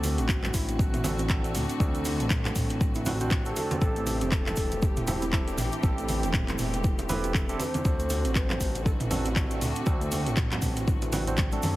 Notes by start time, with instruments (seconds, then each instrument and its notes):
Already playing: analog synth bass D2, string section D3 A3 C4 F#4, tine electric piano C4 D4 F#4 A4, bansuri A4
0.04 open hi-hat, muted conga, high conga, shaker
0.18 analog synth bass A1, handpan C4, bansuri F#4 G4, closed hi-hat, shaker
0.28 kick, clap, muted conga, shaker
0.43 handpan A3, clap, low conga, shaker
0.54 analog synth bass A1, bansuri E4, kick, open hi-hat, shaker
0.69 handpan E3, closed hi-hat, muted conga, shaker
0.79 bansuri F#4, kick, shaker
0.94 handpan E4, closed hi-hat, mid tom, muted conga, shaker
1.04 tine electric piano C4 D4 F#4 A4, open hi-hat, high conga, low conga, shaker
1.18 handpan C4, closed hi-hat, muted conga, shaker
1.29 tine electric piano C4 D4 F#4 A4, kick, clap, high conga, shaker
1.44 handpan D4, closed hi-hat, shaker
1.55 analog synth bass D2, mid tom, open hi-hat, muted conga, shaker
1.69 handpan C4, closed hi-hat, shaker
1.80 analog synth bass D2, tine electric piano C4 D4 F#4 A4, kick, muted conga, shaker
1.95 handpan A3, closed hi-hat, shaker
2.05 open hi-hat, muted conga, high conga, shaker
2.20 analog synth bass A1, handpan C4, closed hi-hat, shaker
2.30 kick, clap, mid tom, muted conga, shaker
2.45 handpan A3, clap, closed hi-hat, low conga, shaker
2.56 analog synth bass A1, kick, mid tom, open hi-hat, shaker
2.69 handpan E3, closed hi-hat, muted conga, shaker
2.81 kick, shaker
2.95 handpan E4, closed hi-hat, muted conga, shaker
3.05 tine electric piano C4 D4 F#4 B4, bansuri F#4, open hi-hat, high conga, low conga, shaker
3.20 handpan C4, tine electric piano C4 D4 F#4 C5, closed hi-hat, muted conga, shaker
3.31 kick, clap, high conga, shaker
3.45 tine electric piano C4 D4 F#4 A4, handpan D4, closed hi-hat, shaker
3.56 bansuri A4, open hi-hat, muted conga, high conga, shaker
3.71 handpan C4, closed hi-hat, high conga, shaker
3.81 analog synth bass A1, string section E3 C4 G4, tine electric piano C4 E4 G4 A4, kick, muted conga, shaker
3.96 handpan A3, closed hi-hat, shaker
4.06 open hi-hat, muted conga, high conga, shaker
4.21 analog synth bass E1, handpan C4, closed hi-hat, shaker
4.32 bansuri A4, kick, clap, muted conga, shaker
4.46 handpan A4, clap, low conga, shaker
4.56 analog synth bass E1, kick, open hi-hat, shaker
4.71 handpan E3, closed hi-hat, muted conga, shaker
4.82 bansuri A4, kick, shaker
4.86 bansuri G4
4.96 handpan E4, closed hi-hat, mid tom, muted conga, shaker
5.07 tine electric piano C4 E4 G4 A4, bansuri E4, open hi-hat, high conga, low conga, shaker
5.22 handpan C4, closed hi-hat, muted conga, shaker
5.33 tine electric piano C4 E4 G4 A4, kick, clap, high conga, shaker
5.47 handpan D4, closed hi-hat, shaker
5.58 analog synth bass A1, mid tom, open hi-hat, muted conga, shaker
5.72 handpan C4, closed hi-hat, shaker
5.83 analog synth bass A1, tine electric piano C4 E4 G4 A4, kick, muted conga, shaker
5.98 handpan A3, closed hi-hat, shaker
6.09 open hi-hat, muted conga, high conga, shaker
6.23 analog synth bass E1, handpan C4, closed hi-hat, shaker
6.33 kick, clap, mid tom, muted conga, shaker
6.48 handpan A4, clap, closed hi-hat, low conga, shaker
6.58 analog synth bass E1, mid tom, open hi-hat, shaker
6.73 handpan E3, closed hi-hat, muted conga, shaker
6.84 kick, shaker
6.99 handpan E4, closed hi-hat, muted conga, shaker
7.09 tine electric piano C4 E4 G4 B4, bansuri C5, open hi-hat, high conga, low conga, shaker
7.13 bansuri A4
7.24 handpan C4, closed hi-hat, muted conga, shaker
7.34 kick, clap, high conga, shaker
7.49 tine electric piano C4 E4 G4 A4, handpan D4, closed hi-hat, shaker
7.59 bansuri B4, open hi-hat, muted conga, high conga, shaker
7.70 bansuri C5
7.74 handpan C4, closed hi-hat, high conga, shaker
7.85 analog synth bass D2, string section D3 A3 F#4, tine electric piano C4 D4 F#4 A4, kick, muted conga, shaker
7.99 handpan A3, closed hi-hat, shaker
8.10 open hi-hat, muted conga, high conga, shaker
8.24 analog synth bass A1, handpan C4, closed hi-hat, shaker
8.34 bansuri C5, kick, clap, muted conga, shaker
8.49 handpan A4, clap, low conga, shaker
8.60 analog synth bass A1, kick, open hi-hat, shaker
8.75 handpan E3, closed hi-hat, muted conga, shaker
8.85 bansuri A4, kick, shaker
9.00 handpan E4, closed hi-hat, mid tom, muted conga, shaker
9.10 tine electric piano C4 D4 F#4 A4, bansuri F#4, open hi-hat, high conga, low conga, shaker
9.25 handpan C4, closed hi-hat, muted conga, shaker
9.36 tine electric piano C4 D4 F#4 A4, kick, clap, high conga, shaker
9.50 handpan D4, closed hi-hat, shaker
9.61 analog synth bass D2, mid tom, open hi-hat, muted conga, shaker
9.75 handpan C4, closed hi-hat, shaker
9.86 analog synth bass D2, tine electric piano C4 D4 F#4 A4, kick, muted conga, shaker
10.01 handpan A3, closed hi-hat, shaker
10.12 open hi-hat, muted conga, high conga, shaker
10.26 analog synth bass A1, handpan C4, closed hi-hat, shaker
10.37 kick, clap, mid tom, muted conga, shaker
10.52 handpan A4, clap, closed hi-hat, low conga, shaker
10.62 analog synth bass A1, kick, mid tom, open hi-hat, shaker
10.76 handpan E3, closed hi-hat, muted conga, shaker
10.88 kick, high conga, shaker
11.02 handpan E4, closed hi-hat, muted conga, shaker
11.12 tine electric piano C4 D4 F#4 B4, open hi-hat, high conga, low conga, shaker
11.27 handpan C4, tine electric piano C4 D4 F#4 C5, closed hi-hat, muted conga, shaker
11.37 kick, clap, high tom, high conga, shaker
11.52 tine electric piano C4 D4 F#4 A4, handpan D4, closed hi-hat, high tom, shaker
11.62 analog synth bass F#2, open hi-hat, mid tom, muted conga, high conga, shaker